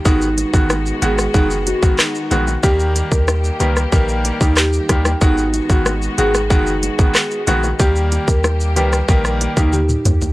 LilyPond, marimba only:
\new Staff \with { instrumentName = "Marimba" } { \time 4/4 \key gis \minor \tempo 4 = 93 dis'16 r8 fis'16 r8 gis'16 r2 r16 | g'8 r16 ais'16 r8 b'16 r16 ais'16 r8 dis'16 g'8. r16 | dis'16 r8 fis'16 r8 gis'16 r2 r16 | g'8 r16 ais'16 r8 b'16 r16 ais'16 r8 dis'16 g'8. r16 | }